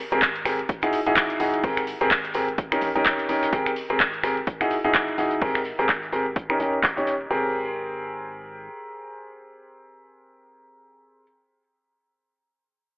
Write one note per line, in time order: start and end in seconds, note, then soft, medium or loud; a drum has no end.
0.12 0.64 G#1 loud
0.12 0.20 C4 medium
0.12 0.20 G4 medium
0.12 0.20 G#4 medium
0.12 0.20 A#4 loud
0.12 closed hi-hat soft
0.22 kick loud
0.22 snare loud
0.22 clap loud
0.22 closed hi-hat medium
0.36 closed hi-hat medium
0.45 0.57 C4 medium
0.45 0.57 G4 medium
0.45 0.57 G#4 medium
0.45 0.57 A#4 medium
0.45 finger snap medium
0.45 snare soft
0.45 closed hi-hat medium
0.45 open hi-hat medium
0.59 closed hi-hat soft
0.69 kick loud
0.69 closed hi-hat medium
0.82 0.98 E1 medium
0.82 0.98 D#4 medium
0.82 0.98 E4 medium
0.82 0.98 F#4 medium
0.82 0.98 G#4 loud
0.82 finger snap medium
0.82 closed hi-hat soft
0.82 closed hi-hat medium
0.93 closed hi-hat medium
0.93 open hi-hat loud
1.06 1.35 E1 medium
1.06 1.38 D#4 medium
1.06 1.38 E4 medium
1.06 1.38 F#4 medium
1.06 1.38 G#4 loud
1.06 closed hi-hat soft
1.16 kick loud
1.16 snare loud
1.16 clap loud
1.16 closed hi-hat medium
1.30 closed hi-hat medium
1.40 1.94 G#1 medium
1.40 1.61 D#4 medium
1.40 1.61 E4 medium
1.40 1.61 F#4 medium
1.40 1.61 G#4 medium
1.40 closed hi-hat medium
1.40 open hi-hat medium
1.53 closed hi-hat soft
1.64 1.81 C4 medium
1.64 1.81 G4 medium
1.64 1.81 G#4 medium
1.64 1.81 A#4 loud
1.64 kick loud
1.64 closed hi-hat medium
1.64 open hi-hat medium
1.77 finger snap medium
1.77 snare soft
1.77 closed hi-hat medium
1.87 closed hi-hat medium
1.87 open hi-hat loud
2.01 2.60 G#1 loud
2.01 2.09 C4 loud
2.01 2.09 G4 medium
2.01 2.09 G#4 medium
2.01 2.09 A#4 loud
2.01 closed hi-hat soft
2.11 kick loud
2.11 snare loud
2.11 clap loud
2.11 closed hi-hat medium
2.25 snare soft
2.25 closed hi-hat medium
2.34 2.46 C4 medium
2.34 2.46 G4 medium
2.34 2.46 G#4 medium
2.34 2.46 A#4 medium
2.34 closed hi-hat medium
2.34 open hi-hat medium
2.48 closed hi-hat soft
2.58 2.75 D#1 medium
2.58 kick loud
2.58 closed hi-hat medium
2.72 2.87 C#4 medium
2.72 2.87 D#4 medium
2.72 2.87 G4 medium
2.72 2.87 A#4 loud
2.72 finger snap medium
2.72 closed hi-hat medium
2.81 2.91 A#1 medium
2.81 closed hi-hat medium
2.81 open hi-hat loud
2.95 3.02 C#2 medium
2.95 3.27 C#4 medium
2.95 3.27 D#4 medium
2.95 3.27 G4 medium
2.95 3.27 A#4 loud
2.95 closed hi-hat soft
3.05 3.23 D#1 medium
3.05 kick loud
3.05 snare loud
3.05 clap loud
3.05 closed hi-hat medium
3.19 snare soft
3.19 closed hi-hat medium
3.29 3.38 D#1 loud
3.29 3.50 C#4 medium
3.29 3.50 D#4 medium
3.29 3.50 G4 medium
3.29 3.50 A#4 medium
3.29 closed hi-hat medium
3.29 open hi-hat medium
3.43 snare medium
3.43 closed hi-hat medium
3.43 closed hi-hat soft
3.53 3.70 C4 medium
3.53 3.70 G4 medium
3.53 3.70 G#4 medium
3.53 3.70 A#4 loud
3.53 kick loud
3.53 closed hi-hat medium
3.66 finger snap medium
3.66 closed hi-hat soft
3.76 closed hi-hat medium
3.76 open hi-hat loud
3.90 4.42 G#1 loud
3.90 3.98 C4 medium
3.90 3.98 G4 medium
3.90 3.98 G#4 medium
3.90 3.98 A#4 loud
3.90 closed hi-hat soft
4.00 kick loud
4.00 snare loud
4.00 clap loud
4.00 closed hi-hat medium
4.14 closed hi-hat soft
4.24 4.35 C4 medium
4.24 4.35 G4 medium
4.24 4.35 G#4 medium
4.24 4.35 A#4 medium
4.24 finger snap medium
4.24 snare soft
4.24 closed hi-hat medium
4.24 open hi-hat medium
4.37 closed hi-hat soft
4.47 kick loud
4.47 closed hi-hat medium
4.61 4.75 E1 medium
4.61 4.76 D#4 medium
4.61 4.76 E4 medium
4.61 4.75 F#4 medium
4.61 4.76 G#4 loud
4.61 finger snap medium
4.61 closed hi-hat soft
4.70 closed hi-hat medium
4.70 open hi-hat loud
4.84 5.13 E1 medium
4.84 5.16 D#4 medium
4.84 5.16 E4 medium
4.84 5.16 F#4 medium
4.84 5.16 G#4 medium
4.84 closed hi-hat soft
4.94 kick loud
4.94 snare loud
4.94 clap loud
4.94 closed hi-hat medium
5.08 closed hi-hat soft
5.18 5.72 G#1 medium
5.18 5.39 D#4 medium
5.18 5.39 E4 medium
5.18 5.39 F#4 medium
5.18 5.39 G#4 medium
5.18 closed hi-hat medium
5.18 open hi-hat medium
5.31 closed hi-hat soft
5.42 5.59 C4 medium
5.42 5.59 G4 medium
5.42 5.59 G#4 medium
5.42 5.59 A#4 loud
5.42 kick loud
5.42 closed hi-hat medium
5.42 open hi-hat medium
5.55 finger snap medium
5.55 snare soft
5.55 closed hi-hat soft
5.65 closed hi-hat medium
5.65 open hi-hat loud
5.79 6.38 G#1 loud
5.79 5.87 C4 medium
5.79 5.87 G4 medium
5.79 5.87 G#4 medium
5.79 5.87 A#4 loud
5.79 closed hi-hat soft
5.89 kick loud
5.89 snare loud
5.89 clap loud
5.89 closed hi-hat medium
6.02 snare soft
6.02 closed hi-hat soft
6.12 6.24 C4 medium
6.12 6.24 G4 medium
6.12 6.24 G#4 medium
6.12 6.24 A#4 medium
6.12 closed hi-hat medium
6.12 open hi-hat medium
6.26 closed hi-hat soft
6.36 6.53 D#1 medium
6.36 kick loud
6.36 closed hi-hat medium
6.50 6.58 C#4 medium
6.50 6.58 D#4 medium
6.50 6.58 G4 medium
6.50 6.58 A#4 loud
6.50 finger snap medium
6.50 closed hi-hat soft
6.60 6.69 D#1 medium
6.60 6.77 C#4 medium
6.60 6.77 D#4 medium
6.60 6.77 G4 medium
6.60 6.77 A#4 medium
6.60 closed hi-hat medium
6.60 open hi-hat loud
6.73 closed hi-hat soft
6.83 kick loud
6.83 snare loud
6.83 clap loud
6.83 closed hi-hat medium
6.97 7.25 D#1 loud
6.97 7.12 C#4 medium
6.97 7.12 D#4 medium
6.97 7.12 G4 medium
6.97 7.12 C#5 medium
6.97 closed hi-hat soft
7.07 snare medium
7.07 closed hi-hat medium
7.07 open hi-hat medium
7.21 closed hi-hat soft
7.31 8.68 G#1 medium
7.31 11.23 C4 medium
7.31 11.22 G4 medium
7.31 11.22 G#4 medium
7.31 11.23 A#4 medium